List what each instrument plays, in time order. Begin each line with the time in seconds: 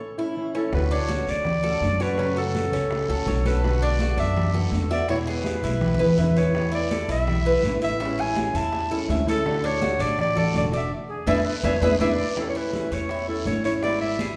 Already playing: clarinet A4, cuban tres C#5
0.00 muted nylon-string guitar stroke
0.18 nylon-string guitar A3 C#4 E4, cuban tres E4
0.36 nylon-string guitar E3 A3 C#4 E4
0.54 nylon-string guitar A3 C#4 E4, cuban tres C#4, clarinet A4
0.73 upright bass D2, nylon-string guitar D3 A3 C#4 F#4, clarinet B4, high bongo, high conga, long guiro
0.90 cuban tres D4, clarinet C#5, high bongo, high conga
1.08 nylon-string guitar D3 A3 C#4 F#4, cuban tres F#4, high bongo, high conga, short guiro
1.27 upright bass D2, clarinet D5, high bongo, high conga, short guiro
1.45 muted nylon-string guitar stroke, high bongo, high conga, low conga, long guiro
1.63 nylon-string guitar A3 C#4 F#4, cuban tres A4, high bongo, high conga
1.81 upright bass F#2, nylon-string guitar D3 A3 C#4 F#4, high bongo, low bongo, high conga, short guiro
2.00 nylon-string guitar A3 C#4 F#4, clarinet B4, cuban tres C#5, high conga, short guiro
2.18 nylon-string guitar C#3 F#3 A3 C#4 F#4, cuban tres C#4, high bongo, high conga, long guiro
2.36 cuban tres F#4, clarinet A4, high bongo, high conga
2.54 nylon-string guitar F#3 A3 C#4 F#4, high bongo, high conga, short guiro
2.72 upright bass C#2, cuban tres C#4, high bongo, short guiro
2.91 muted nylon-string guitar stroke, high bongo, high conga, long guiro
3.08 upright bass C#2, nylon-string guitar F#3 A3 C#4 F#4, cuban tres A4, high bongo, high conga
3.26 upright bass B1, nylon-string guitar F#3 A3 C#4 F#4, cuban tres C#5, high bongo, low bongo, high conga, short guiro
3.45 nylon-string guitar F#3 A3 C#4 F#4, cuban tres A4, clarinet B4, high conga, short guiro
3.63 nylon-string guitar B2 D3 A3 B3 F#4, high bongo, high conga, long guiro
3.81 cuban tres D4, clarinet D5, high bongo, high conga
3.99 nylon-string guitar D3 A3 B3 F#4, cuban tres F#4, high bongo, high conga, short guiro
4.17 upright bass F#2, cuban tres D4, clarinet E5, high bongo, high conga, short guiro
4.36 muted nylon-string guitar stroke, high bongo, high conga, low conga, long guiro
4.54 nylon-string guitar D3 A3 B3 F#4, cuban tres A4, high bongo, high conga
4.72 upright bass E2, nylon-string guitar D3 A3 B3 F#4, high bongo, low bongo, high conga, short guiro
4.91 nylon-string guitar D3 A3 B3 F#4, clarinet D5, cuban tres E5, high conga, short guiro
5.09 nylon-string guitar B2 E3 G#3 B3 E4, cuban tres E4, clarinet C#5, high bongo, high conga, long guiro
5.27 cuban tres G#4, clarinet B4, high bongo, high conga
5.44 nylon-string guitar E3 G#3 B3 E4, high bongo, high conga, short guiro
5.63 upright bass B1, cuban tres E4, high bongo, short guiro
5.69 high conga
5.81 muted nylon-string guitar stroke, high bongo, low conga, long guiro
5.94 low conga
5.99 upright bass D2, nylon-string guitar E3 G#3 B3 E4, cuban tres B4, high bongo
6.06 low conga
6.17 upright bass E2, nylon-string guitar E3 G#3 B3 E4, cuban tres E5, high bongo, low bongo, low conga, short guiro
6.31 low conga
6.36 nylon-string guitar E3 G#3 B3 E4, cuban tres B4, clarinet C#5, short guiro
6.43 low conga
6.55 nylon-string guitar E3 A3 B3 E4, high bongo, high conga, long guiro
6.72 cuban tres E4, clarinet D5, high bongo, high conga
6.91 nylon-string guitar E3 A3 B3 E4, cuban tres A4, high bongo, high conga, short guiro
7.08 upright bass B1, cuban tres E4, clarinet E5, high bongo, high conga, short guiro
7.27 muted nylon-string guitar stroke, high bongo, high conga, low conga, long guiro
7.45 nylon-string guitar A3 B3 E4, cuban tres B4, high bongo, high conga
7.63 upright bass A1, nylon-string guitar E3 A3 B3 E4, high bongo, low bongo, high conga, short guiro
7.82 nylon-string guitar A3 B3 E4, cuban tres E5, clarinet E5, high conga, short guiro
8.00 nylon-string guitar E3 G#3 C#4 E4, cuban tres E4, high bongo, high conga, long guiro
8.19 cuban tres G#4, clarinet G#5, high bongo, high conga
8.36 nylon-string guitar E3 G#3 C#4 E4, high bongo, high conga, short guiro
8.53 upright bass E2, cuban tres E4, clarinet A5, high bongo, short guiro
8.72 muted nylon-string guitar stroke, high bongo, high conga, long guiro
8.91 nylon-string guitar G#3 C#4 E4, cuban tres A4, high bongo, high conga
9.08 upright bass D2, nylon-string guitar E3 G#3 C#4 E4, cuban tres E5, high bongo, low bongo, high conga, short guiro
9.26 nylon-string guitar G#3 C#4 E4, cuban tres A4, clarinet A4, high conga, short guiro
9.44 nylon-string guitar D3 A3 D4 F#4, high bongo, high conga, long guiro
9.64 cuban tres D4, clarinet C#5, high bongo, high conga
9.81 nylon-string guitar D3 A3 D4 F#4, cuban tres F#4, high bongo, high conga, short guiro
9.99 upright bass A1, cuban tres D4, clarinet D5, high bongo, high conga, short guiro
10.18 clarinet D5, muted nylon-string guitar stroke, high bongo, high conga, low conga, long guiro
10.35 nylon-string guitar A3 D4 F#4, cuban tres A4, clarinet D5, high bongo, high conga, low conga
10.54 upright bass E1, nylon-string guitar D3 A3 D4 F#4, clarinet D5, high bongo, low bongo, high conga, short guiro
10.72 nylon-string guitar A3 D4 F#4, cuban tres D5, high conga, short guiro
10.76 clarinet E5
11.08 flute G#4
11.27 upright bass E2, nylon-string guitar B3 D4 E4, cuban tres E4 G#4 B4, flute A4, clarinet E5, low bongo, high conga, long guiro
11.45 flute B4
11.63 upright bass E2, nylon-string guitar B3 D4 E4, cuban tres E4 G#4 B4, flute C#5, clarinet E5, low bongo, high conga
11.81 upright bass E2, nylon-string guitar B3 D4 E4, cuban tres E4 G#4 B4, flute B4, clarinet E5, low bongo, high conga, long guiro
11.99 upright bass E2, nylon-string guitar B3 D4 E4, cuban tres E4 G#4 B4, flute D5, clarinet E5, low bongo, high conga, long guiro
12.36 nylon-string guitar E3 A3 C#4 E4, clarinet A4, high bongo, high conga, long guiro
12.49 clarinet C#5
12.55 cuban tres E4, clarinet B4, high bongo, high conga
12.73 nylon-string guitar E3 A3 C#4 E4, high bongo, high conga, short guiro
12.91 upright bass E2, cuban tres C#5, clarinet C#5, high bongo, high conga, short guiro
13.09 cuban tres E4, muted nylon-string guitar stroke, high bongo, high conga, long guiro
13.27 nylon-string guitar A3 C#4 E4, clarinet A4, high bongo, high conga
13.45 upright bass G#1, nylon-string guitar E3 A3 C#4 E4, clarinet C#5, cuban tres C#5, high bongo, low bongo, high conga, short guiro
13.64 nylon-string guitar A3 C#4 E4, clarinet C#5, high conga, short guiro
13.83 nylon-string guitar G#3 B3 E4, cuban tres E4, clarinet D5, high bongo, high conga, long guiro
14.00 clarinet E5, high bongo, high conga
14.19 nylon-string guitar G#3 B3 E4, cuban tres G#4, high bongo, high conga, short guiro